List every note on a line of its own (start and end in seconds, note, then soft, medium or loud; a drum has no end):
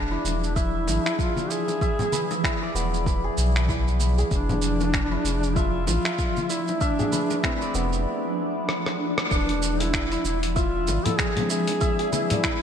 0.00 0.17 E1 medium
0.00 5.50 E3 medium
0.00 12.62 F3 medium
0.00 1.89 B3 medium
0.00 0.58 D4 medium
0.00 1.34 D4 medium
0.00 2.73 D4 loud
0.00 0.11 E4 medium
0.00 1.27 G#4 medium
0.00 4.32 G#4 medium
0.00 1.91 B4 medium
0.00 8.06 D5 medium
0.00 12.62 D5 medium
0.00 0.56 E5 medium
0.11 1.05 E4 medium
0.25 0.89 E1 loud
0.25 high bongo soft
0.25 cabasa medium
0.44 cabasa soft
0.56 1.19 E4 medium
0.56 1.50 E5 loud
0.56 kick medium
0.56 cabasa soft
0.87 0.99 G#1 medium
0.87 high bongo medium
0.87 cabasa medium
1.06 2.43 E4 medium
1.06 finger snap medium
1.06 cabasa soft
1.19 1.52 F4 loud
1.19 kick loud
1.19 cabasa soft
1.36 high conga medium
1.36 cabasa soft
1.50 2.44 G#4 loud
1.50 1.81 E5 medium
1.50 cabasa medium
1.68 high bongo soft
1.68 cabasa soft
1.81 4.11 E5 medium
1.81 kick loud
1.81 cabasa soft
1.99 3.24 G#4 medium
1.99 low conga medium
1.99 cabasa soft
2.12 3.06 B4 medium
2.12 high conga medium
2.12 cabasa medium
2.31 high bongo medium
2.31 cabasa soft
2.44 3.69 E4 medium
2.44 finger snap medium
2.44 kick loud
2.44 cabasa soft
2.62 5.08 D5 medium
2.75 3.30 E1 loud
2.75 6.89 B3 medium
2.75 cabasa medium
2.94 cabasa soft
3.06 5.80 B4 medium
3.06 kick loud
3.06 cabasa soft
3.24 4.18 G#4 medium
3.38 4.24 B1 medium
3.38 cabasa medium
3.56 finger snap medium
3.56 cabasa soft
3.69 5.11 E4 medium
3.69 kick loud
3.69 cabasa soft
3.88 cabasa soft
4.00 high conga soft
4.00 cabasa medium
4.18 6.99 G#4 medium
4.18 cabasa soft
4.31 5.17 F1 medium
4.31 5.57 D4 loud
4.31 kick medium
4.31 cabasa soft
4.49 low conga medium
4.49 cabasa soft
4.62 cabasa medium
4.80 high bongo medium
4.80 cabasa soft
4.94 finger snap medium
4.94 kick medium
4.94 cabasa soft
5.12 7.43 E4 medium
5.22 5.88 F1 loud
5.22 10.55 D4 medium
5.22 high bongo soft
5.22 cabasa medium
5.43 cabasa soft
5.56 5.86 F4 loud
5.56 6.05 E5 loud
5.56 kick loud
5.56 cabasa soft
5.81 9.31 A3 medium
5.87 5.99 A1 medium
5.87 6.51 F4 loud
5.87 high bongo medium
5.87 cabasa medium
6.05 6.49 E5 medium
6.05 finger snap medium
6.05 cabasa soft
6.19 kick loud
6.19 cabasa soft
6.36 high conga medium
6.36 cabasa soft
6.49 6.83 E4 loud
6.49 6.81 E5 medium
6.49 cabasa medium
6.68 high bongo soft
6.68 cabasa soft
6.81 7.43 D4 loud
6.81 9.11 E5 loud
6.81 kick loud
6.81 cabasa soft
6.99 10.02 G#4 medium
6.99 low conga medium
6.99 cabasa soft
7.12 9.86 B4 medium
7.12 high conga medium
7.12 cabasa medium
7.30 high bongo medium
7.30 cabasa soft
7.43 8.02 C4 medium
7.43 10.12 E4 medium
7.43 finger snap medium
7.43 kick loud
7.43 cabasa soft
7.61 10.08 D5 medium
7.61 cabasa soft
7.75 8.06 F1 loud
7.75 11.89 B3 medium
7.75 high bongo soft
7.75 cabasa medium
7.93 cabasa soft
8.69 cross-stick medium
8.86 cross-stick medium
9.18 cross-stick medium
9.30 10.17 E1 medium
9.30 9.82 D4 loud
9.30 kick loud
9.30 cabasa soft
9.49 closed hi-hat soft
9.62 cabasa medium
9.80 10.25 E4 medium
9.80 closed hi-hat medium
9.80 high bongo medium
9.80 cabasa soft
9.94 finger snap loud
9.94 kick loud
9.94 cabasa soft
9.99 12.62 E5 medium
10.12 11.05 E4 medium
10.12 closed hi-hat soft
10.12 cabasa soft
10.25 10.89 E1 loud
10.25 10.39 E4 medium
10.25 cabasa medium
10.43 closed hi-hat medium
10.43 cabasa soft
10.52 12.62 G#4 medium
10.56 11.07 F4 loud
10.56 11.50 E5 loud
10.56 kick loud
10.56 cabasa soft
10.87 10.99 G#1 medium
10.87 high bongo medium
10.87 cabasa medium
11.05 12.43 E4 medium
11.05 11.20 A4 loud
11.05 closed hi-hat medium
11.05 low conga medium
11.05 cabasa soft
11.18 11.50 G#4 loud
11.18 finger snap loud
11.18 kick loud
11.18 cabasa soft
11.34 12.62 F3 medium
11.34 12.62 G#3 medium
11.34 12.62 C4 medium
11.34 closed hi-hat soft
11.34 high conga medium
11.34 low conga medium
11.38 12.62 D4 medium
11.50 12.09 G#4 loud
11.50 11.81 E5 medium
11.50 cabasa medium
11.68 closed hi-hat medium
11.68 high bongo medium
11.68 cabasa soft
11.81 12.62 E5 loud
11.81 kick loud
11.81 cabasa soft
11.99 12.62 G#4 medium
11.99 closed hi-hat soft
12.12 12.62 E4 loud
12.12 12.62 B4 medium
12.12 high bongo soft
12.12 high conga medium
12.12 cabasa medium
12.30 closed hi-hat medium
12.30 high bongo medium
12.30 low conga medium
12.30 cabasa soft
12.43 12.62 E4 medium
12.43 finger snap loud
12.43 kick loud
12.43 cabasa soft